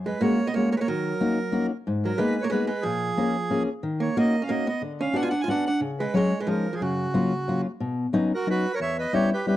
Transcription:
0.00 0.13 F#2 medium
0.06 0.20 G#3 medium
0.06 0.22 B4 medium
0.21 0.39 G#3 medium
0.21 0.44 A#3 medium
0.21 0.39 A#3 medium
0.21 0.39 C#4 medium
0.21 0.39 F#4 medium
0.21 0.48 C#5 medium
0.47 0.54 B3 medium
0.47 0.54 D#5 medium
0.54 0.72 G#3 soft
0.54 0.70 A#3 medium
0.54 0.73 A#3 soft
0.54 0.73 C#4 soft
0.54 0.72 F#4 medium
0.54 0.70 C#5 medium
0.71 0.76 A#3 medium
0.71 0.75 C#5 medium
0.76 0.80 G#3 soft
0.76 0.80 B4 medium
0.76 0.88 C#5 medium
0.81 0.87 A#3 medium
0.88 1.12 D#3 soft
0.88 1.67 F#3 medium
0.88 1.67 A#4 medium
1.21 1.38 A#3 medium
1.21 1.38 C#4 medium
1.21 1.38 D#4 medium
1.21 1.38 F#4 medium
1.52 1.70 A#3 medium
1.52 1.70 C#4 medium
1.52 1.70 D#4 medium
1.52 1.70 F#4 medium
1.87 2.11 G#2 medium
2.05 2.19 F#3 medium
2.05 2.20 A#4 medium
2.18 2.42 G#3 medium
2.18 2.36 A#3 medium
2.18 2.36 B3 medium
2.18 2.36 D#4 medium
2.18 2.37 G#4 medium
2.18 2.44 B4 medium
2.42 2.49 A#3 medium
2.42 2.51 C#5 medium
2.50 2.66 G#3 medium
2.50 2.69 A#3 medium
2.50 2.70 B3 soft
2.50 2.70 D#4 soft
2.50 2.69 G#4 medium
2.50 2.65 B4 medium
2.67 2.82 G#3 medium
2.67 2.84 B4 medium
2.82 3.10 A#2 medium
2.82 3.64 F3 medium
2.82 3.63 G#4 medium
3.17 3.35 A#3 medium
3.17 3.35 C#4 medium
3.17 3.35 F4 medium
3.17 3.35 G#4 medium
3.50 3.68 A#3 medium
3.50 3.68 C#4 medium
3.50 3.68 F4 medium
3.50 3.68 G#4 medium
3.83 4.08 D#3 medium
4.00 4.15 A#3 medium
4.00 4.17 C#5 medium
4.17 4.34 A#3 medium
4.17 4.41 A#3 medium
4.17 4.34 C#4 medium
4.17 4.35 D#4 medium
4.17 4.35 F#4 medium
4.17 4.44 D#5 medium
4.42 4.49 C#4 medium
4.42 4.51 F5 medium
4.49 4.66 A#3 medium
4.49 4.67 A#3 medium
4.49 4.67 C#4 soft
4.49 4.67 D#4 soft
4.49 4.67 F#4 medium
4.49 4.67 D#5 medium
4.67 4.82 B3 medium
4.67 4.82 D#5 medium
4.82 5.07 D3 medium
5.01 5.15 C#4 medium
5.01 5.17 F5 medium
5.13 5.32 B3 medium
5.13 5.32 C#4 medium
5.13 5.32 D4 medium
5.13 5.22 D4 medium
5.13 5.32 F#4 medium
5.13 5.23 F#5 loud
5.22 5.29 F4 medium
5.22 5.29 G#5 medium
5.30 5.41 D4 medium
5.30 5.42 F#5 medium
5.41 5.50 F4 medium
5.41 5.49 G#5 medium
5.48 5.66 B3 medium
5.48 5.66 C#4 medium
5.48 5.66 D4 soft
5.48 5.66 D4 medium
5.48 5.66 F#4 medium
5.48 5.65 F#5 medium
5.66 5.81 D4 medium
5.66 5.80 F#5 medium
5.81 6.06 C#3 medium
6.00 6.14 G#3 medium
6.00 6.15 B4 medium
6.14 6.32 F#3 medium
6.14 6.32 G#3 medium
6.14 6.39 G#3 medium
6.14 6.32 C#4 medium
6.14 6.32 F#4 medium
6.14 6.40 C#5 medium
6.40 6.47 G#3 medium
6.40 6.48 B4 medium
6.47 6.71 F3 medium
6.47 6.65 F3 soft
6.47 6.65 G#3 soft
6.47 6.65 C#4 soft
6.47 6.65 D#4 medium
6.47 6.75 A#4 medium
6.73 6.80 F3 soft
6.73 6.82 G#4 medium
6.80 7.05 F#2 soft
6.80 7.61 C#3 medium
6.80 7.61 F#4 medium
7.14 7.32 F#3 medium
7.14 7.31 A#3 medium
7.14 7.31 C#4 medium
7.14 7.32 F4 medium
7.48 7.65 F#3 soft
7.48 7.65 A#3 soft
7.48 7.65 C#4 medium
7.48 7.66 F4 medium
7.80 8.06 B2 medium
8.13 8.31 F#3 medium
8.13 8.31 B3 medium
8.13 8.31 C#4 medium
8.13 8.31 D#4 medium
8.35 8.48 F#4 medium
8.35 8.49 A#4 medium
8.47 8.64 F#3 soft
8.47 8.64 B3 soft
8.47 8.64 C#4 soft
8.47 8.65 D#4 medium
8.47 8.72 F#4 medium
8.47 8.75 B4 medium
8.74 8.80 A#4 medium
8.74 8.79 C#5 medium
8.80 9.05 E2 medium
8.80 8.97 C#5 medium
8.80 8.97 E5 medium
8.99 9.12 B4 medium
8.99 9.14 D#5 medium
9.13 9.31 G3 medium
9.13 9.31 B3 medium
9.13 9.31 C#4 medium
9.13 9.31 E4 medium
9.13 9.30 G4 medium
9.13 9.30 C#5 loud
9.33 9.46 G4 medium
9.33 9.46 B4 medium
9.47 9.57 G3 medium
9.47 9.57 B3 soft
9.47 9.57 C#4 soft
9.47 9.57 E4 medium
9.47 9.57 G4 medium
9.47 9.57 B4 medium

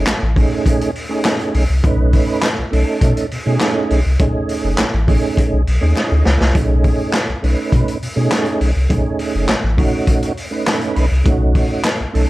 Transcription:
0.00 0.13 A3 medium
0.00 0.13 C#4 medium
0.00 0.13 D#4 medium
0.00 0.13 G#4 medium
0.07 0.14 A1 soft
0.07 snare loud
0.07 clap loud
0.07 closed hi-hat loud
0.22 0.45 A1 loud
0.36 0.90 A3 loud
0.36 0.91 C#4 medium
0.36 0.91 D#4 loud
0.36 0.91 G#4 loud
0.36 kick loud
0.36 open hi-hat medium
0.66 kick loud
0.66 closed hi-hat medium
0.81 closed hi-hat medium
0.95 open hi-hat medium
1.09 1.64 A3 medium
1.09 1.64 C#4 medium
1.09 1.64 D#4 medium
1.09 1.65 G#4 loud
1.25 snare loud
1.25 clap medium
1.25 clap loud
1.25 closed hi-hat medium
1.40 closed hi-hat soft
1.54 1.66 B1 loud
1.54 open hi-hat medium
1.70 1.81 C2 medium
1.83 2.19 B1 loud
1.83 2.48 A3 loud
1.83 2.49 C#4 medium
1.83 2.49 D#4 medium
1.83 2.49 B4 loud
1.83 kick loud
1.83 closed hi-hat medium
2.13 kick medium
2.13 open hi-hat medium
2.42 snare loud
2.42 clap loud
2.42 closed hi-hat loud
2.44 clap loud
2.58 2.64 B1 soft
2.71 2.84 B1 loud
2.71 3.26 A3 loud
2.71 3.26 C#4 medium
2.71 3.26 D#4 medium
2.71 3.27 A4 loud
2.71 open hi-hat medium
3.01 3.13 B2 loud
3.01 kick loud
3.01 closed hi-hat loud
3.17 closed hi-hat medium
3.31 3.38 B2 medium
3.31 open hi-hat medium
3.46 3.58 B2 loud
3.46 4.00 A3 loud
3.46 4.00 C#4 loud
3.46 4.00 D#4 loud
3.46 4.01 G#4 loud
3.60 snare loud
3.60 clap medium
3.60 closed hi-hat loud
3.90 4.02 B1 loud
3.90 open hi-hat medium
4.06 4.17 C2 medium
4.19 4.31 B1 loud
4.19 4.84 A3 medium
4.19 4.85 C#4 medium
4.19 4.85 D#4 medium
4.19 4.85 G#4 loud
4.19 kick loud
4.19 closed hi-hat medium
4.49 open hi-hat medium
4.64 4.75 F#1 medium
4.78 4.85 A1 soft
4.78 snare loud
4.78 clap loud
4.78 closed hi-hat loud
4.80 clap loud
4.94 5.17 A1 loud
5.07 5.62 A3 loud
5.07 5.62 C#4 medium
5.07 5.62 D#4 loud
5.07 5.63 G#4 loud
5.07 kick medium
5.07 open hi-hat medium
5.37 kick medium
5.37 closed hi-hat loud
5.53 5.64 B1 medium
5.67 5.79 B1 medium
5.67 open hi-hat medium
5.81 5.94 D#2 medium
5.81 6.35 A3 medium
5.81 6.35 C#4 medium
5.81 6.36 D#4 medium
5.81 6.36 G#4 loud
5.96 6.24 D#5 medium
5.96 snare medium
5.96 clap medium
6.12 6.23 D2 loud
6.25 6.38 C#2 loud
6.25 6.53 B4 medium
6.25 snare loud
6.41 6.52 C2 medium
6.41 snare loud
6.55 6.90 B1 loud
6.55 7.20 A3 loud
6.55 7.20 C#4 medium
6.55 7.20 D#4 medium
6.55 6.62 G4 medium
6.55 kick loud
6.55 closed hi-hat loud
6.63 7.24 G#4 medium
6.84 kick medium
6.84 open hi-hat medium
7.13 snare loud
7.13 clap loud
7.13 closed hi-hat loud
7.15 clap loud
7.29 7.35 B1 soft
7.43 7.55 B1 medium
7.43 7.97 A3 medium
7.43 7.97 C#4 medium
7.43 7.98 D#4 medium
7.43 7.98 B4 loud
7.43 open hi-hat medium
7.72 7.84 B2 loud
7.72 kick medium
7.72 closed hi-hat medium
7.88 closed hi-hat medium
8.02 8.08 B2 soft
8.02 open hi-hat medium
8.16 8.28 B2 loud
8.16 8.70 A3 loud
8.16 8.71 C#4 medium
8.16 8.71 D#4 medium
8.16 8.71 G#4 loud
8.31 snare loud
8.31 clap medium
8.31 closed hi-hat medium
8.46 closed hi-hat medium
8.61 8.73 B1 medium
8.61 open hi-hat medium
8.76 8.88 C2 medium
8.89 9.02 B1 loud
8.89 9.54 A3 medium
8.89 9.55 C#4 medium
8.89 9.55 D#4 medium
8.89 9.55 G#4 loud
8.89 kick loud
8.89 closed hi-hat medium
9.19 open hi-hat medium
9.35 9.46 F#1 loud
9.49 9.55 A1 soft
9.49 snare loud
9.49 clap loud
9.49 closed hi-hat loud
9.50 clap loud
9.63 9.87 A1 medium
9.77 10.32 A3 loud
9.77 10.32 C#4 medium
9.77 10.32 D#4 medium
9.77 10.33 F#4 loud
9.77 kick loud
9.77 open hi-hat medium
10.07 kick medium
10.07 closed hi-hat loud
10.22 closed hi-hat medium
10.37 open hi-hat medium
10.51 11.05 A3 loud
10.51 11.06 C#4 medium
10.51 11.06 D#4 medium
10.51 11.06 B4 medium
10.67 snare loud
10.67 clap medium
10.67 closed hi-hat loud
10.81 closed hi-hat medium
10.96 11.08 B1 medium
10.96 open hi-hat medium
11.11 11.23 C2 medium
11.24 11.61 B1 loud
11.24 11.89 A3 medium
11.24 11.90 C#4 medium
11.24 11.90 D#4 medium
11.24 11.90 F#4 loud
11.24 kick loud
11.24 closed hi-hat medium
11.55 kick medium
11.55 open hi-hat medium
11.84 snare loud
11.84 clap loud
11.84 closed hi-hat loud
12.00 12.06 B1 medium
12.13 12.26 B1 loud
12.13 12.30 A3 medium
12.13 12.30 C#4 medium
12.13 12.30 D#4 medium
12.13 12.30 A4 loud
12.13 open hi-hat medium

